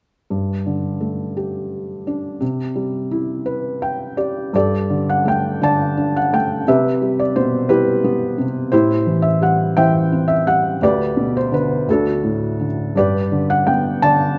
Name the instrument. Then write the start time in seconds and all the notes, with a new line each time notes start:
felt piano
0.30 G2
0.66 D3
1.01 A3
1.37 G4
2.07 D4
2.41 C3
2.76 G3
3.11 E4
3.46 B4
3.82 G5
4.17 G4 D5
4.53 G2 G4 A4 D5
4.90 D3
5.10 F#5
5.25 A3 G5
5.61 D3 D5 A5
5.97 D4
6.16 F#5
6.33 A3 G5
6.67 C3 G4 B4 E5
7.02 G3
7.19 D5
7.36 B2 C5
7.69 G3 E4 G4 B4
8.04 B3
8.38 C3
8.72 A2 E4 G4 C5
9.07 E3
9.22 E5
9.42 G3 F#5
9.77 E3 C5 E5 G5
10.12 C4
10.28 E5
10.47 G3 F#5
10.82 D2 G4 B4 D5
11.17 B2
11.37 C5
11.52 D3 B4
11.88 D2 F#4 A4
11.93 D4
12.23 A2
12.59 D3
12.95 G2 G4 B4 D5
13.32 D3
13.50 F#5
13.67 B3 G5
14.02 D3 D5 A5